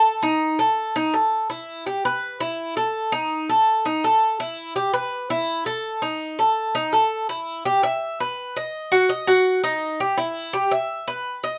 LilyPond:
\new Staff \with { instrumentName = "Cuban tres" } { \time 4/4 \key e \minor \tempo 4 = 166 a'8 dis'4 a'4 dis'8 a'4 | e'4 g'8 b'4 e'4 a'8~ | a'8 dis'4 a'4 dis'8 a'4 | e'4 g'8 b'4 e'4 a'8~ |
a'8 dis'4 a'4 dis'8 a'4 | e'4 g'8 e''4 b'4 dis''8~ | dis''8 fis'8 dis''8 fis'4 dis'4 g'8 | e'4 g'8 e''4 b'4 dis''8 | }